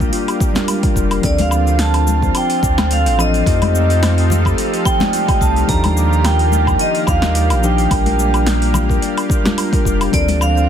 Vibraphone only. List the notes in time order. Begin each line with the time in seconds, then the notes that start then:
1.25 D5
1.41 F5
1.81 A5
2.37 G5
2.93 F5
3.20 D#5
4.85 G5
5.41 A5
5.69 A#5
6.26 G5
6.81 D#5
7.09 F5
7.64 G5
10.14 D5
10.42 F5